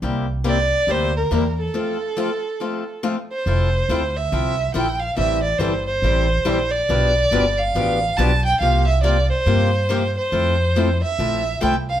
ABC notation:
X:1
M:4/4
L:1/8
Q:"Swing" 1/4=140
K:F
V:1 name="Violin"
z2 d2 c B2 A- | A6 z c- | c3 e3 g f | e d c c4 d- |
d3 f3 a g | f e d c4 c- | c3 e3 g f |]
V:2 name="Steel-string acoustic guitar"
[C,G,B,EG] z [C,G,B,EG] z [C,G,B,EG] z [C,G,B,EG] z | [F,A,CFA] z [F,A,CFA] z [F,A,CFA] z [F,A,CFA] z | [F,CEA] z [F,CEA] z [F,CEA] z [F,CEA] z | [E,G,CEA] z [E,G,CEA] z [E,G,CEA] z [E,G,CEA] z |
[=B,,F,=B,DG=B] z [B,,F,B,DGB] z [B,,F,B,DGB] z [B,,F,B,DGB] z | [C,F,B,FG] z [C,F,B,FG] z [C,F,B,FG] z [C,F,B,FG] z | [F,A,CEA] z [F,A,CEA] z [F,A,CEA] z [F,A,CEA] z |]
V:3 name="Upright bass" clef=bass
C,,4 D,,2 E,,2 | z8 | F,,,2 D,,2 C,,2 B,,,2 | A,,,2 G,,,2 A,,,2 B,,,2 |
=B,,,2 G,,,2 A,,,2 B,,,2 | C,,4 G,,4 | F,,4 B,,,2 C,,2 |]